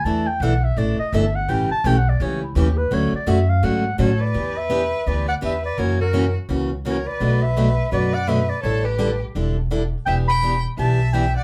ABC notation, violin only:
X:1
M:4/4
L:1/8
Q:"Swing" 1/4=168
K:Edor
V:1 name="Violin"
z8 | z8 | z6 A B- | B B3 B d B B |
^A F2 z3 A B- | B B3 B d B B | A G2 z4 z | e g2 z e2 e d |]